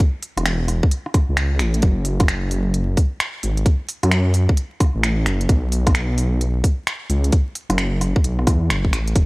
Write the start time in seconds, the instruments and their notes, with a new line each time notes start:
0.00 kick, closed hi-hat
0.23 open hi-hat
0.37 detuned saw bass E1, cross-stick, closed hi-hat
0.46 finger snap, closed hi-hat
0.68 cross-stick, open hi-hat
0.83 kick
0.91 closed hi-hat
1.06 cross-stick
1.14 kick, cross-stick, open hi-hat
1.29 detuned saw bass C#2
1.37 finger snap, closed hi-hat
1.59 detuned saw bass A1, finger snap, open hi-hat
1.74 closed hi-hat
1.82 detuned saw bass F#1, kick, closed hi-hat
2.05 open hi-hat
2.20 kick, cross-stick, closed hi-hat
2.28 finger snap, closed hi-hat
2.51 open hi-hat
2.74 closed hi-hat
2.97 kick, open hi-hat
3.20 finger snap, closed hi-hat
3.43 detuned saw bass G#1, open hi-hat
3.57 closed hi-hat
3.66 kick, closed hi-hat
3.89 open hi-hat
4.03 detuned saw bass F#2, cross-stick, closed hi-hat
4.12 finger snap, closed hi-hat
4.34 open hi-hat
4.49 kick
4.57 closed hi-hat
4.80 kick, cross-stick, open hi-hat
4.95 detuned saw bass A1
5.03 finger snap, closed hi-hat
5.26 detuned saw bass F#1, finger snap, open hi-hat
5.41 closed hi-hat
5.49 detuned saw bass B1, kick, closed hi-hat
5.72 open hi-hat
5.87 kick, cross-stick, closed hi-hat
5.95 finger snap, closed hi-hat
6.18 open hi-hat
6.41 closed hi-hat
6.64 kick, open hi-hat
6.87 finger snap, closed hi-hat
7.09 detuned saw bass C#2, open hi-hat
7.24 closed hi-hat
7.32 kick, closed hi-hat
7.55 open hi-hat
7.69 detuned saw bass F#1, cross-stick, closed hi-hat
7.78 finger snap, closed hi-hat
8.01 cross-stick, open hi-hat
8.16 kick
8.24 detuned saw bass B1, closed hi-hat
8.39 cross-stick
8.47 detuned saw bass E2, kick, cross-stick, open hi-hat
8.69 detuned saw bass F#1, finger snap, closed hi-hat
8.85 kick
8.92 detuned saw bass A1, finger snap, open hi-hat
9.08 closed hi-hat
9.16 detuned saw bass E1, kick, closed hi-hat